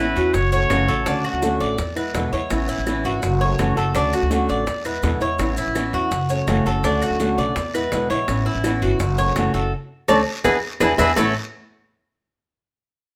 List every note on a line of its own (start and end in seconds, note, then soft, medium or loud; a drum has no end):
0.00 0.15 A1 medium
0.00 0.34 E3 medium
0.00 0.34 B3 medium
0.00 0.34 C#4 medium
0.00 0.15 E4 medium
0.00 0.35 E4 medium
0.00 0.35 B4 medium
0.16 0.33 E2 medium
0.16 0.51 F#4 medium
0.16 high bongo soft
0.16 short guiro medium
0.16 maracas soft
0.34 0.69 F#1 loud
0.34 0.51 C#5 loud
0.34 muted nylon-string guitar stroke medium
0.34 high bongo medium
0.34 long guiro medium
0.34 maracas medium
0.52 0.70 A3 soft
0.52 0.70 C#4 medium
0.52 0.70 F#4 soft
0.52 1.20 C#5 loud
0.52 0.87 C#5 medium
0.52 high bongo soft
0.52 maracas medium
0.70 0.87 F#1 medium
0.70 0.87 C#3 medium
0.70 0.88 E3 medium
0.70 0.88 A3 medium
0.70 0.88 C#4 medium
0.70 0.87 F#4 medium
0.70 high bongo medium
0.70 low bongo medium
0.70 short guiro medium
0.70 claves medium
0.70 maracas medium
0.88 1.05 A1 medium
0.88 1.05 A3 soft
0.88 1.06 C#4 soft
0.88 1.06 F#4 medium
0.88 1.06 A4 medium
0.88 high bongo soft
0.88 short guiro medium
0.88 maracas soft
1.06 1.24 D2 loud
1.06 1.41 D3 medium
1.06 1.42 A3 medium
1.06 1.42 C#4 medium
1.06 1.24 D4 medium
1.06 1.42 F#4 medium
1.06 high bongo medium
1.06 long guiro medium
1.06 maracas medium
1.25 1.60 F#4 medium
1.25 claves medium
1.33 1.59 D2 medium
1.42 1.78 D3 medium
1.42 1.78 A3 medium
1.42 1.78 C#4 medium
1.42 1.79 F#4 medium
1.42 high bongo medium
1.42 short guiro medium
1.42 maracas medium
1.60 1.78 A1 medium
1.60 1.95 D5 medium
1.60 high bongo soft
1.60 short guiro medium
1.60 maracas soft
1.78 2.13 E2 medium
1.78 muted nylon-string guitar stroke medium
1.78 high bongo medium
1.78 long guiro medium
1.78 maracas medium
1.96 2.14 G#3 soft
1.96 2.14 B3 soft
1.96 2.13 E4 medium
1.96 2.32 B4 medium
1.96 high bongo soft
1.96 claves medium
1.96 maracas medium
2.14 2.32 E2 medium
2.14 2.32 B2 medium
2.14 2.32 D3 medium
2.14 2.32 G#3 medium
2.14 2.32 B3 medium
2.14 2.31 E4 medium
2.14 high bongo medium
2.14 low bongo medium
2.14 short guiro medium
2.14 maracas medium
2.32 2.50 E2 medium
2.32 2.51 G#3 soft
2.32 2.50 B3 soft
2.32 2.50 E4 soft
2.32 2.68 C#5 medium
2.32 high bongo soft
2.32 short guiro medium
2.32 maracas soft
2.50 2.68 A1 loud
2.50 2.85 E3 medium
2.50 2.86 B3 medium
2.50 2.86 C#4 medium
2.50 2.87 E4 medium
2.50 high bongo medium
2.50 long guiro medium
2.50 claves medium
2.50 maracas medium
2.68 3.04 E4 medium
2.68 maracas medium
2.78 3.04 A1 medium
2.86 3.21 E3 medium
2.86 3.22 B3 medium
2.86 3.22 C#4 medium
2.86 3.23 E4 medium
2.86 high bongo medium
2.86 short guiro medium
2.86 claves medium
2.86 maracas medium
3.04 3.22 G#1 medium
3.04 3.40 F#4 medium
3.04 high bongo soft
3.04 short guiro medium
3.04 maracas soft
3.22 3.57 F#1 loud
3.22 muted nylon-string guitar stroke medium
3.22 high bongo medium
3.22 long guiro medium
3.22 maracas medium
3.41 3.58 A3 soft
3.41 3.59 C#4 soft
3.41 3.58 F#4 soft
3.41 3.76 C#5 medium
3.41 high bongo soft
3.58 3.76 F#1 medium
3.58 3.76 C#3 medium
3.58 3.76 E3 medium
3.58 3.76 A3 medium
3.58 3.76 C#4 medium
3.58 3.74 F#4 medium
3.58 high bongo medium
3.58 low bongo medium
3.58 short guiro medium
3.58 claves medium
3.58 maracas medium
3.76 3.94 F#1 medium
3.76 3.93 A3 soft
3.76 3.94 C#4 soft
3.76 3.94 F#4 medium
3.76 3.95 A4 medium
3.76 high bongo soft
3.76 short guiro medium
3.76 maracas soft
3.94 4.12 D2 loud
3.94 4.29 D3 medium
3.94 4.30 A3 medium
3.94 4.30 C#4 medium
3.94 4.13 D4 medium
3.94 4.31 F#4 medium
3.94 high bongo medium
3.94 long guiro medium
3.94 maracas medium
4.13 4.48 F#4 medium
4.13 claves medium
4.13 maracas medium
4.22 4.48 D2 medium
4.30 4.66 D3 medium
4.30 4.66 A3 medium
4.30 4.67 C#4 medium
4.30 4.67 F#4 medium
4.30 high bongo medium
4.30 short guiro medium
4.30 maracas medium
4.49 4.66 A1 medium
4.49 4.84 D5 medium
4.49 high bongo soft
4.49 short guiro medium
4.49 maracas soft
4.67 5.01 E2 loud
4.67 muted nylon-string guitar stroke medium
4.67 high bongo medium
4.67 long guiro medium
4.67 maracas medium
4.85 5.03 G#3 soft
4.85 5.03 B3 soft
4.85 5.02 E4 soft
4.85 5.20 B4 medium
4.85 high bongo soft
4.85 claves medium
4.85 maracas medium
5.03 5.20 E2 loud
5.03 5.21 B2 medium
5.03 5.21 D3 medium
5.03 5.21 G#3 medium
5.03 5.21 B3 medium
5.03 5.19 E4 medium
5.03 high bongo medium
5.03 low bongo medium
5.03 short guiro medium
5.03 maracas medium
5.20 5.38 E2 medium
5.20 5.39 G#3 soft
5.20 5.39 B3 soft
5.20 5.38 E4 soft
5.20 5.56 C#5 medium
5.20 high bongo soft
5.20 short guiro medium
5.20 maracas soft
5.39 5.56 A1 loud
5.39 5.74 E3 medium
5.39 5.74 B3 medium
5.39 5.75 C#4 medium
5.39 5.76 E4 medium
5.39 high bongo medium
5.39 long guiro medium
5.39 claves medium
5.39 maracas medium
5.57 5.93 E4 medium
5.57 maracas medium
5.66 5.92 A1 medium
5.75 6.10 E3 medium
5.75 6.11 B3 medium
5.75 6.11 C#4 medium
5.75 6.12 E4 medium
5.75 high bongo medium
5.75 short guiro medium
5.75 claves medium
5.75 maracas medium
5.93 6.11 E2 medium
5.93 6.29 F#4 medium
5.93 high bongo soft
5.93 short guiro medium
5.93 maracas soft
6.11 6.46 F#1 medium
6.11 muted nylon-string guitar stroke medium
6.11 high bongo medium
6.11 long guiro medium
6.11 maracas medium
6.29 6.47 A3 soft
6.29 6.47 C#4 soft
6.29 6.47 F#4 medium
6.29 6.65 C#5 medium
6.29 high bongo soft
6.29 maracas medium
6.47 6.65 F#1 medium
6.47 6.65 C#3 medium
6.47 6.65 E3 medium
6.47 6.65 A3 medium
6.47 6.66 C#4 medium
6.47 6.64 F#4 medium
6.47 high bongo medium
6.47 low bongo medium
6.47 short guiro medium
6.47 claves medium
6.47 maracas medium
6.65 6.83 F#1 medium
6.65 6.83 A3 soft
6.65 6.83 C#4 soft
6.65 6.83 F#4 medium
6.65 6.84 A4 medium
6.65 high bongo soft
6.65 short guiro medium
6.65 maracas soft
6.83 7.01 D2 loud
6.83 7.19 D3 medium
6.83 7.19 A3 medium
6.83 7.20 C#4 medium
6.83 7.02 D4 medium
6.83 7.20 F#4 medium
6.83 high bongo medium
6.83 long guiro medium
6.83 maracas medium
7.02 7.37 F#4 medium
7.02 claves medium
7.02 maracas medium
7.11 7.36 D2 medium
7.20 7.55 D3 medium
7.20 7.55 A3 medium
7.20 7.56 C#4 medium
7.20 7.56 F#4 medium
7.20 high bongo medium
7.20 short guiro medium
7.20 maracas medium
7.38 7.55 B1 medium
7.38 7.73 D5 medium
7.38 high bongo soft
7.38 short guiro medium
7.38 maracas soft
7.56 7.90 E2 loud
7.56 muted nylon-string guitar stroke medium
7.56 high bongo medium
7.56 long guiro medium
7.56 maracas medium
7.74 7.91 G#3 soft
7.74 7.92 B3 medium
7.74 7.91 E4 medium
7.74 8.09 B4 medium
7.74 high bongo soft
7.74 claves medium
7.74 maracas medium
7.91 8.09 E2 medium
7.91 8.09 B2 medium
7.91 8.09 D3 medium
7.91 8.10 G#3 medium
7.91 8.10 B3 medium
7.91 8.09 E4 medium
7.91 high bongo medium
7.91 low bongo medium
7.91 short guiro medium
7.91 maracas medium
8.10 8.27 A#1 medium
8.10 8.28 G#3 soft
8.10 8.28 B3 soft
8.10 8.27 E4 medium
8.10 8.45 C#5 medium
8.10 high bongo soft
8.10 short guiro medium
8.10 maracas soft
8.28 8.45 A1 loud
8.28 8.63 E3 medium
8.28 8.64 B3 medium
8.28 8.64 C#4 medium
8.28 8.64 E4 medium
8.28 high bongo medium
8.28 long guiro medium
8.28 claves medium
8.28 maracas medium
8.46 8.81 E4 medium
8.55 8.81 A1 medium
8.64 9.00 E3 medium
8.64 9.00 B3 medium
8.64 9.00 C#4 medium
8.64 9.01 E4 medium
8.64 high bongo medium
8.64 short guiro medium
8.64 claves medium
8.64 maracas medium
8.82 8.99 G1 medium
8.82 9.17 F#4 medium
8.82 high bongo soft
8.82 short guiro medium
8.82 maracas soft
9.00 9.34 F#1 loud
9.00 muted nylon-string guitar stroke medium
9.00 high bongo medium
9.00 long guiro medium
9.00 maracas medium
9.18 9.36 A3 soft
9.18 9.36 C#4 soft
9.18 9.36 F#4 medium
9.18 9.53 C#5 medium
9.18 high bongo soft
9.18 maracas medium
9.36 9.53 F#1 medium
9.36 9.54 C#3 medium
9.36 9.54 E3 medium
9.36 9.54 A3 medium
9.36 9.54 C#4 medium
9.36 9.53 F#4 medium
9.36 high bongo medium
9.36 low bongo medium
9.36 short guiro medium
9.36 claves medium
9.36 maracas medium
9.54 9.72 F#1 medium
9.54 9.73 A3 soft
9.54 9.72 C#4 soft
9.54 9.72 F#4 medium
9.54 9.72 A4 medium
9.54 high bongo soft
9.54 short guiro medium
9.54 maracas soft
10.08 10.22 D2 medium
10.08 10.20 A3 medium
10.08 10.20 C#4 medium
10.08 10.20 D4 medium
10.08 10.20 A4 loud
10.08 10.20 C#5 loud
10.08 10.20 D5 medium
10.08 low bongo medium
10.08 long guiro medium
10.08 claves loud
10.08 maracas loud
10.44 10.58 E2 loud
10.44 10.56 B3 loud
10.44 10.56 D4 loud
10.44 10.56 E4 medium
10.44 10.56 E4 loud
10.44 10.56 G#4 medium
10.44 10.56 B4 medium
10.44 low bongo medium
10.44 long guiro medium
10.44 claves loud
10.44 maracas medium
10.80 10.94 E2 loud
10.80 10.92 B3 medium
10.80 10.92 D4 medium
10.80 10.92 E4 loud
10.80 10.92 E4 medium
10.80 10.92 G#4 medium
10.80 10.92 B4 loud
10.80 low bongo loud
10.80 long guiro loud
10.80 claves medium
10.80 maracas medium
10.98 11.12 E2 loud
10.98 11.11 B3 medium
10.98 11.11 D4 medium
10.98 11.10 E4 loud
10.98 11.11 E4 loud
10.98 11.10 G#4 medium
10.98 11.10 B4 loud
10.98 low bongo loud
10.98 long guiro loud
10.98 claves loud
10.98 maracas medium
11.16 11.34 A1 medium
11.16 11.31 A2 medium
11.16 11.32 E3 medium
11.16 11.33 A3 medium
11.16 11.32 B3 medium
11.16 11.32 C#4 medium
11.16 11.34 E4 medium
11.16 11.32 E4 medium
11.16 11.34 A4 loud
11.16 11.34 C#5 medium
11.16 low bongo medium
11.16 long guiro loud
11.16 claves loud
11.16 maracas loud